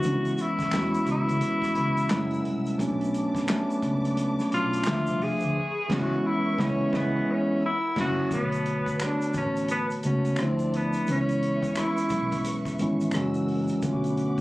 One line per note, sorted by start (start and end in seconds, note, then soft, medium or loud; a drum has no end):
0.00 0.65 E3 medium
0.00 0.65 G#3 medium
0.00 0.34 F#4 loud
0.00 2.08 B4 medium
0.00 2.08 E5 medium
0.00 2.08 C#6 medium
0.00 shaker medium
0.04 0.32 C#2 loud
0.04 0.66 B3 medium
0.04 0.66 C#4 medium
0.04 0.13 D4 medium
0.04 closed hi-hat medium
0.13 0.70 E4 medium
0.25 closed hi-hat soft
0.25 shaker soft
0.34 0.43 F#4 medium
0.34 shaker medium
0.39 1.09 E4 loud
0.39 closed hi-hat medium
0.59 0.87 E2 medium
0.59 kick medium
0.59 snare soft
0.59 closed hi-hat soft
0.59 shaker soft
0.70 1.94 E3 medium
0.70 1.94 G#3 medium
0.70 1.95 B3 medium
0.70 1.95 C#4 medium
0.70 1.96 F#4 medium
0.70 finger snap medium
0.70 snare loud
0.70 clap medium
0.70 shaker medium
0.94 closed hi-hat soft
0.94 shaker medium
1.07 1.24 C#2 medium
1.07 kick loud
1.07 closed hi-hat medium
1.07 shaker soft
1.11 2.77 E4 loud
1.29 1.40 C#3 loud
1.29 kick medium
1.29 closed hi-hat medium
1.29 shaker soft
1.41 closed hi-hat medium
1.41 shaker medium
1.62 muted fingered electric bass stroke soft
1.62 kick medium
1.62 snare soft
1.62 closed hi-hat soft
1.62 shaker soft
1.75 2.05 C#2 medium
1.75 closed hi-hat medium
1.97 closed hi-hat soft
1.97 shaker soft
2.08 2.72 F#3 medium
2.08 2.72 G#3 medium
2.08 2.73 A#3 medium
2.08 2.78 A#4 medium
2.08 2.78 F#5 medium
2.08 2.78 E6 medium
2.08 finger snap medium
2.08 snare loud
2.08 clap medium
2.08 shaker medium
2.12 2.39 F#1 medium
2.12 2.73 C#4 medium
2.12 2.74 E4 loud
2.31 closed hi-hat soft
2.31 shaker soft
2.45 2.74 C2 medium
2.45 closed hi-hat medium
2.66 closed hi-hat soft
2.66 shaker soft
2.77 3.24 B1 loud
2.77 3.40 F#3 medium
2.77 3.41 A3 medium
2.77 3.41 B3 medium
2.77 3.42 C#4 medium
2.77 3.42 D4 medium
2.77 4.83 B4 medium
2.77 4.83 A5 medium
2.77 5.52 D6 medium
2.77 kick loud
2.77 closed hi-hat medium
2.77 shaker medium
3.01 closed hi-hat soft
3.01 shaker soft
3.14 closed hi-hat medium
3.14 shaker medium
3.35 muted fingered electric bass stroke soft
3.35 kick loud
3.35 snare soft
3.35 closed hi-hat soft
3.35 shaker soft
3.48 4.70 F#3 medium
3.48 4.71 A3 medium
3.48 4.71 B3 medium
3.48 4.72 C#4 medium
3.48 4.72 D4 medium
3.48 finger snap medium
3.48 snare loud
3.48 clap medium
3.48 shaker medium
3.70 closed hi-hat soft
3.70 shaker medium
3.82 4.38 C#2 medium
3.82 kick loud
3.82 closed hi-hat medium
3.82 shaker soft
4.05 closed hi-hat medium
4.05 shaker soft
4.17 closed hi-hat medium
4.17 shaker medium
4.39 snare soft
4.39 closed hi-hat soft
4.39 shaker soft
4.52 4.80 B1 loud
4.52 5.24 F4 loud
4.52 closed hi-hat medium
4.73 closed hi-hat soft
4.73 shaker soft
4.84 5.48 F3 medium
4.84 5.49 A3 medium
4.84 5.54 F4 medium
4.84 5.54 C5 medium
4.84 finger snap medium
4.84 snare loud
4.84 clap medium
4.84 shaker medium
4.88 5.04 D2 loud
4.88 5.49 C4 medium
4.88 5.49 D4 medium
4.88 5.50 E5 medium
5.07 5.19 C2 medium
5.07 closed hi-hat soft
5.07 shaker medium
5.22 5.94 G#4 loud
5.22 open hi-hat soft
5.40 5.56 D2 medium
5.40 closed hi-hat soft
5.40 shaker soft
5.55 7.60 B4 medium
5.55 7.60 E5 medium
5.55 7.60 C#6 medium
5.88 6.15 C#2 medium
5.88 6.14 E3 loud
5.88 6.15 G#3 medium
5.88 6.15 B3 loud
5.88 6.16 C#4 loud
5.88 kick loud
5.88 snare loud
5.88 crash medium
5.93 6.28 F#4 loud
5.99 6.20 E4 loud
6.26 6.61 E4 loud
6.58 6.84 C#2 loud
6.58 6.83 E3 loud
6.58 6.83 G#3 loud
6.58 6.84 B3 loud
6.58 6.97 C#4 medium
6.58 6.85 C#4 loud
6.58 6.85 E4 loud
6.58 kick loud
6.58 snare loud
6.93 7.18 C#2 loud
6.93 7.18 E3 loud
6.93 7.18 G#3 loud
6.93 7.19 B3 loud
6.93 7.32 B3 medium
6.93 7.19 C#4 medium
6.93 kick loud
6.93 snare loud
6.97 7.20 E4 loud
7.31 7.64 C#4 medium
7.61 8.30 A#4 medium
7.61 8.30 F#5 medium
7.61 8.30 E6 medium
7.66 7.96 E4 loud
7.96 8.22 F#1 loud
7.96 8.21 F#3 loud
7.96 8.22 A#3 loud
7.96 8.23 C#4 loud
7.96 8.23 E4 loud
7.96 kick loud
7.96 snare loud
7.96 crash medium
8.00 8.31 F#4 loud
8.31 8.86 B1 loud
8.31 9.53 D3 medium
8.31 9.54 A3 medium
8.31 9.54 B3 medium
8.31 8.97 B3 medium
8.31 10.36 B4 medium
8.31 9.55 C#5 medium
8.31 10.36 A5 medium
8.31 kick loud
8.31 closed hi-hat medium
8.31 shaker medium
8.35 9.55 F#4 medium
8.52 closed hi-hat soft
8.52 shaker soft
8.66 closed hi-hat medium
8.86 kick medium
8.86 closed hi-hat soft
8.86 shaker soft
9.00 finger snap medium
9.00 cross-stick loud
9.00 closed hi-hat medium
9.00 shaker medium
9.04 9.34 D4 medium
9.22 closed hi-hat soft
9.22 shaker soft
9.33 9.90 A1 medium
9.33 9.68 C#4 medium
9.33 kick medium
9.33 closed hi-hat medium
9.33 shaker soft
9.56 closed hi-hat medium
9.56 shaker soft
9.68 9.86 B3 medium
9.68 closed hi-hat medium
9.68 shaker medium
9.90 closed hi-hat soft
9.90 shaker soft
10.03 10.32 C#2 medium
10.03 10.38 C#3 medium
10.03 10.37 A3 medium
10.03 10.39 B3 medium
10.03 10.43 C#4 medium
10.03 10.40 C#4 medium
10.03 10.40 F#4 medium
10.03 closed hi-hat medium
10.03 shaker soft
10.25 closed hi-hat soft
10.25 shaker soft
10.36 10.94 D2 medium
10.36 10.99 F3 medium
10.36 11.00 A3 medium
10.36 11.00 C4 medium
10.36 11.06 D5 medium
10.36 11.06 A5 medium
10.36 finger snap medium
10.36 cross-stick medium
10.36 closed hi-hat medium
10.36 shaker medium
10.40 10.77 C4 medium
10.40 11.01 D4 medium
10.40 11.01 E4 medium
10.59 closed hi-hat soft
10.59 shaker soft
10.74 11.09 B3 medium
10.74 closed hi-hat medium
10.93 closed hi-hat soft
10.93 shaker soft
11.06 11.63 C#2 medium
11.06 12.29 E3 medium
11.06 12.29 G#3 medium
11.06 12.30 B3 medium
11.06 12.30 C#4 medium
11.06 11.16 D#4 medium
11.06 13.11 B4 medium
11.06 13.11 E5 medium
11.06 13.11 C#6 medium
11.06 closed hi-hat medium
11.06 shaker medium
11.11 11.80 C#4 medium
11.16 12.34 E4 medium
11.29 closed hi-hat soft
11.29 shaker soft
11.43 closed hi-hat medium
11.63 kick medium
11.63 closed hi-hat soft
11.63 shaker soft
11.76 12.46 E4 medium
11.76 finger snap medium
11.76 cross-stick loud
11.76 closed hi-hat medium
11.76 shaker medium
11.97 closed hi-hat soft
11.97 shaker soft
12.09 12.66 B1 medium
12.09 kick medium
12.09 closed hi-hat medium
12.09 shaker soft
12.32 kick medium
12.32 closed hi-hat medium
12.32 shaker soft
12.45 closed hi-hat medium
12.45 shaker medium
12.65 kick medium
12.65 cross-stick soft
12.65 closed hi-hat soft
12.65 shaker soft
12.79 13.08 G#1 loud
12.79 13.13 E3 medium
12.79 13.13 G#3 medium
12.79 13.14 B3 medium
12.79 13.15 C#4 medium
12.79 13.15 E4 medium
12.79 closed hi-hat medium
12.79 shaker soft
13.00 closed hi-hat soft
13.00 shaker soft
13.11 13.70 F#1 medium
13.11 13.76 E3 medium
13.11 13.76 G#3 medium
13.11 13.82 A#4 medium
13.11 13.80 F#5 medium
13.11 13.82 E6 medium
13.11 finger snap medium
13.11 cross-stick medium
13.11 closed hi-hat medium
13.11 shaker medium
13.16 13.76 A#3 medium
13.16 13.77 C#4 medium
13.16 13.77 F#4 medium
13.34 closed hi-hat soft
13.34 shaker soft
13.48 open hi-hat soft
13.68 closed hi-hat soft
13.68 shaker soft
13.82 14.38 B1 loud
13.82 14.41 D3 medium
13.82 14.41 A3 medium
13.82 14.41 B3 medium
13.82 14.41 C#4 medium
13.82 14.41 B4 medium
13.82 14.41 F#5 medium
13.82 14.41 D6 medium
13.82 kick loud
13.82 closed hi-hat medium
13.82 shaker medium
13.86 13.93 F4 medium
13.92 14.41 F#4 loud
14.04 closed hi-hat soft
14.04 shaker soft
14.17 closed hi-hat medium
14.38 kick medium